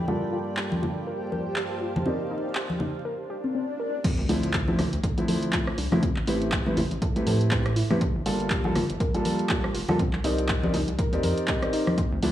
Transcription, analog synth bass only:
4.19 4.26 D2 loud
4.29 4.73 D2 medium
4.79 4.88 D2 medium
4.93 5.00 D2 medium
5.78 5.87 C2 medium
6.17 6.24 A1 loud
6.27 6.72 A1 medium
6.77 6.87 A1 medium
6.91 6.98 A1 medium
7.27 7.83 A2 medium
8.15 8.22 G1 loud
8.26 8.70 G1 medium
8.75 8.85 G1 medium
8.89 8.97 G1 medium
9.74 9.84 F1 medium
10.13 10.21 C2 medium
10.24 10.68 C2 medium
10.74 10.83 C2 medium
10.88 10.95 C2 medium
11.13 11.20 D#2 medium
11.23 11.33 F2 medium
12.12 12.19 D2 loud
12.23 12.32 D2 loud

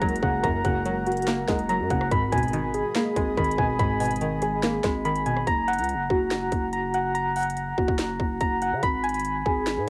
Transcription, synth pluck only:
0.00 0.84 F#3 medium
0.00 0.86 G#3 medium
0.00 0.65 A#3 loud
0.23 0.64 C#3 medium
0.44 1.48 F#2 loud
0.65 1.70 C#3 medium
0.86 1.68 F#3 medium
1.28 2.11 A#3 loud
1.48 2.11 G#3 medium
1.70 2.11 F#3 medium
1.91 2.11 C#3 medium
2.12 3.16 G#2 loud
2.33 3.37 B2 medium
2.53 3.36 D#3 medium
2.95 4.00 A#3 loud
3.16 4.21 G#3 medium
3.37 4.20 D#3 medium
3.58 3.99 B2 medium
3.79 4.84 G#2 loud
4.00 5.05 B2 medium
4.21 5.04 D#3 medium
4.63 5.47 A#3 loud
4.84 5.47 G#3 medium
5.05 5.47 D#3 medium
5.26 5.47 B2 medium

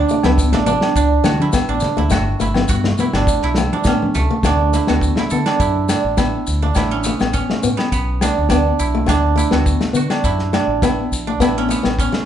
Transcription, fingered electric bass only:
0.24 0.53 C#2 loud
0.53 0.76 A1 medium
0.96 1.18 C#2 medium
1.26 1.48 D3 medium
1.69 1.80 A1 medium
1.98 2.09 D2 medium
2.11 2.34 G1 loud
2.40 2.63 G1 medium
2.70 2.92 G2 medium
3.14 3.25 G1 medium
3.27 3.39 A1 medium
3.43 3.65 B1 medium
3.85 4.07 A2 medium
4.15 4.27 C#2 medium
4.44 4.77 D2 medium
4.89 5.11 D2 medium
5.32 5.43 D3 medium
5.60 5.93 F#2 medium
6.05 6.37 A1 medium
6.48 6.70 D2 medium
6.76 7.10 A1 medium
7.21 7.43 A1 medium
7.64 7.75 A2 medium
7.92 8.26 B1 medium
8.38 8.70 D2 medium
8.80 9.02 B1 medium
9.08 9.42 D2 medium
9.52 9.75 D2 medium
9.94 10.06 D3 medium
10.24 10.58 F#2 medium
10.68 11.01 A1 medium
11.12 11.34 A#1 medium
11.40 11.75 A1 loud
11.85 12.08 A1 medium

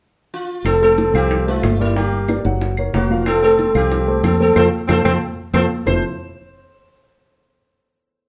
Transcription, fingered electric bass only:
0.64 1.10 F1 medium
1.14 1.59 C2 medium
1.63 2.39 G1 medium
2.45 2.90 F#1 loud
2.94 3.69 F1 medium
3.75 4.20 C2 medium
4.23 4.54 F2 medium
4.56 4.68 F2 medium
4.89 5.01 F2 medium
5.05 5.17 F2 medium
5.54 5.66 F2 medium
5.86 6.02 F1 medium

